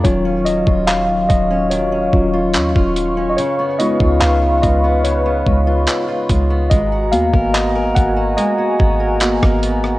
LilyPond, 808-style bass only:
\new Staff \with { instrumentName = "808-style bass" } { \clef bass \time 4/4 \key gis \dorian \tempo 4 = 72 dis,,8. dis,,8. dis,,4 dis,,8 dis,16 dis,,8. | r8. cis,16 cis,8 cis,4 cis,8 r8 cis,8 | gis,,8 dis,16 gis,,8. gis,,8 r8 gis,,8. gis,,8. | }